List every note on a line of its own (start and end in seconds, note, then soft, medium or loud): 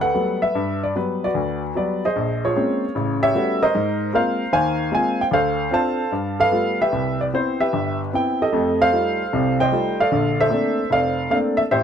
0.00 0.52 A4 medium
0.00 0.42 B4 medium
0.00 0.11 D5 medium
0.00 0.44 F#5 loud
0.00 0.11 G5 loud
0.14 0.43 F#3 soft
0.14 0.43 G3 soft
0.14 0.43 A3 soft
0.14 0.44 B3 medium
0.42 0.95 B4 medium
0.42 0.80 E5 medium
0.55 0.90 G2 medium
0.83 0.96 D5 medium
0.96 1.24 F#3 medium
0.96 1.24 G3 soft
0.96 1.24 B3 medium
0.96 1.24 B4 medium
1.24 2.00 F#4 medium
1.24 2.00 B4 medium
1.24 1.61 D5 medium
1.34 1.70 D2 medium
1.75 2.04 F#3 medium
1.75 2.04 G3 soft
1.75 2.04 B3 medium
1.75 2.04 D5 medium
2.05 2.44 G#4 medium
2.05 2.80 C5 medium
2.05 2.45 D#5 medium
2.16 2.51 A#1 medium
2.45 2.93 F4 medium
2.45 2.93 G#4 medium
2.45 3.19 C#5 medium
2.56 2.84 G#3 medium
2.56 2.84 A#3 soft
2.56 2.84 C4 soft
2.56 2.84 C#4 medium
2.95 3.30 A1 medium
2.95 3.30 C#3 medium
3.23 3.71 G4 medium
3.23 3.72 C#5 medium
3.23 3.63 E5 loud
3.34 3.63 G3 medium
3.34 3.63 A3 medium
3.34 3.63 B3 soft
3.34 3.63 C#4 medium
3.34 3.63 F#4 medium
3.62 4.13 A#4 medium
3.62 4.13 C5 medium
3.62 4.11 D#5 loud
3.75 4.09 G#2 medium
4.13 4.41 G#3 medium
4.13 4.41 A#3 soft
4.13 4.42 C4 soft
4.13 4.42 F4 medium
4.13 4.90 A#4 medium
4.13 4.51 C5 medium
4.13 4.51 F5 medium
4.53 4.88 D#2 medium
4.53 4.87 D#3 medium
4.53 5.28 C5 medium
4.53 5.28 F5 medium
4.53 4.93 G#5 loud
4.92 5.20 G#3 medium
4.92 5.20 A#3 medium
4.92 5.21 C4 soft
4.92 5.21 F4 medium
4.92 5.21 G#5 medium
5.21 5.26 G5 medium
5.31 5.66 D2 medium
5.31 6.10 A4 medium
5.31 5.72 C5 medium
5.31 5.70 F5 loud
5.71 6.00 C4 medium
5.71 6.00 D4 soft
5.71 6.00 F4 medium
5.71 6.11 C5 medium
5.71 6.37 F5 medium
5.71 6.43 A5 medium
6.12 6.48 G2 medium
6.40 6.90 A4 medium
6.40 6.79 B4 medium
6.40 6.78 F5 loud
6.52 6.81 G3 medium
6.52 6.81 A3 soft
6.52 6.81 B3 medium
6.52 6.81 F4 medium
6.81 7.58 G4 medium
6.81 7.57 B4 medium
6.81 7.19 E5 medium
6.92 7.28 C2 medium
7.21 7.26 D5 medium
7.34 7.62 B3 soft
7.34 7.62 C4 soft
7.34 7.62 E4 medium
7.34 7.59 C5 medium
7.60 8.37 G4 medium
7.60 8.37 B4 medium
7.60 7.98 E5 medium
7.73 8.08 G1 medium
8.13 8.42 B3 medium
8.13 8.42 C4 soft
8.13 8.43 E4 medium
8.13 8.42 G5 medium
8.42 9.17 G4 medium
8.42 8.80 A4 medium
8.42 8.83 D#5 medium
8.53 8.88 F2 medium
8.53 8.88 A3 medium
8.81 9.56 A4 medium
8.81 9.56 C5 medium
8.81 9.56 F5 loud
8.93 9.21 G3 medium
8.93 9.21 A3 soft
8.93 9.22 F4 medium
9.33 9.68 C2 medium
9.33 9.67 C3 medium
9.60 10.09 C5 medium
9.60 10.09 D#5 medium
9.60 9.97 G5 loud
9.72 10.00 G3 medium
9.72 10.00 A3 soft
9.72 10.00 F4 medium
10.00 10.39 A4 medium
10.00 10.75 D5 medium
10.00 10.41 F5 loud
10.12 10.47 A#1 medium
10.12 10.46 D3 medium
10.40 10.91 A4 medium
10.40 11.15 C5 medium
10.40 10.89 E5 loud
10.50 10.79 A3 medium
10.50 10.79 A#3 medium
10.50 10.79 C4 medium
10.50 10.79 D4 medium
10.90 11.26 F1 medium
10.90 11.68 A4 medium
10.90 11.68 D5 medium
10.90 11.30 F5 loud
11.30 11.59 A3 medium
11.30 11.59 A#3 medium
11.30 11.60 C4 medium
11.30 11.60 D4 medium
11.30 11.37 F5 medium
11.57 11.62 E5 medium
11.71 11.83 A1 medium
11.71 11.83 G4 medium
11.71 11.83 C5 medium
11.71 11.83 E5 loud